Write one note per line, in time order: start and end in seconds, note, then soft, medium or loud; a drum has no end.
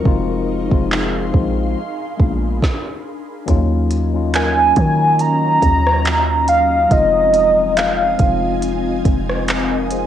0.00 0.49 F3 loud
0.00 0.50 G#3 medium
0.00 0.26 F#4 medium
0.00 0.26 A#4 medium
0.05 0.69 F1 loud
0.05 0.50 C4 medium
0.05 1.75 D#4 medium
0.05 0.51 D#4 loud
0.05 0.51 F4 loud
0.05 1.75 G#4 medium
0.05 1.75 F5 medium
0.05 1.75 C6 medium
0.05 kick loud
0.69 1.32 F1 loud
0.69 1.15 F3 medium
0.69 1.16 G#3 medium
0.69 1.16 C4 medium
0.69 1.17 D#4 medium
0.69 kick medium
0.73 1.17 F4 medium
0.92 clap loud
1.32 1.75 A#1 loud
1.32 1.76 F3 medium
1.32 1.76 G#3 medium
1.32 1.77 C4 medium
1.32 1.77 D#4 medium
1.32 kick medium
1.36 1.78 F4 medium
1.76 2.62 D4 medium
1.76 2.62 A#4 medium
1.76 2.61 G#5 medium
1.76 2.62 B5 medium
2.17 2.61 A#1 loud
2.17 2.61 G#3 medium
2.17 2.62 A#3 medium
2.17 2.62 B3 medium
2.17 2.63 D4 medium
2.17 2.63 F4 medium
2.17 kick medium
2.62 kick medium
2.62 snare medium
3.46 4.73 D#2 loud
3.46 3.92 F#3 loud
3.46 6.88 F#3 medium
3.46 3.93 A#3 loud
3.46 3.93 C#4 loud
3.46 6.88 C#4 medium
3.46 3.94 D#4 loud
3.46 10.07 D#5 medium
3.46 6.88 A#5 medium
3.46 kick loud
3.46 closed hi-hat medium
3.50 3.95 F4 loud
3.91 closed hi-hat medium
4.12 4.58 F#3 medium
4.12 4.58 A#3 medium
4.12 4.59 C#4 medium
4.12 4.60 D#4 medium
4.16 4.60 F4 medium
4.34 7.14 A#4 medium
4.34 5.22 G#5 loud
4.34 clap loud
4.34 closed hi-hat medium
4.76 5.59 D#3 loud
4.76 5.97 A#3 medium
4.76 5.98 C#4 medium
4.76 5.98 D#4 medium
4.76 5.99 F#4 medium
4.76 kick medium
4.76 closed hi-hat medium
5.19 6.48 A#5 loud
5.19 closed hi-hat medium
5.62 6.87 D#2 loud
5.62 kick medium
5.62 closed hi-hat medium
5.87 cross-stick medium
6.05 clap loud
6.05 closed hi-hat medium
6.48 6.93 F5 medium
6.48 closed hi-hat medium
6.89 8.16 F1 loud
6.89 7.80 F3 medium
6.89 6.97 G3 medium
6.89 7.81 C4 medium
6.89 10.07 C4 medium
6.89 7.82 D#4 medium
6.89 10.07 F4 medium
6.89 7.79 D#5 loud
6.89 9.71 F5 medium
6.89 10.07 G#5 medium
6.89 kick loud
6.89 closed hi-hat medium
6.93 7.84 G#3 medium
6.93 7.83 F4 loud
7.34 closed hi-hat medium
7.77 8.63 F5 medium
7.77 clap loud
7.77 closed hi-hat medium
8.18 9.02 F1 loud
8.18 9.40 F3 medium
8.18 9.40 G#3 medium
8.18 9.41 C4 medium
8.18 9.41 D#4 medium
8.18 kick medium
8.18 closed hi-hat medium
8.22 9.42 F4 medium
8.62 closed hi-hat medium
9.05 10.07 F1 loud
9.05 kick medium
9.05 closed hi-hat medium
9.29 cross-stick medium
9.48 clap loud
9.48 closed hi-hat medium
9.71 9.90 A#4 medium
9.91 10.07 G#4 medium
9.91 10.07 C5 medium
9.91 closed hi-hat medium